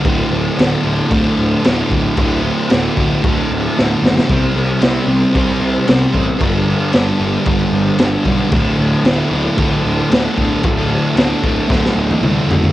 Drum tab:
CC |x---x---x---x---|x---x---x-------|x---x---x---x---|x---x---x---x---|
SD |----o-------o---|----o-------o-oo|----o-------o---|----o-------o---|
T1 |----------------|----------------|----------------|----------------|
T2 |----------------|----------------|----------------|----------------|
FT |----------------|----------------|----------------|----------------|
BD |o-------o-----o-|o-----o-o-------|o-------o-----o-|o-------o-----o-|

CC |x---x---x---x---|x---x-----------|
SD |----o-------o---|----o---oo------|
T1 |----------------|-----------o----|
T2 |----------------|------------o---|
FT |----------------|--------------oo|
BD |o-------o-----o-|o-----o-o-------|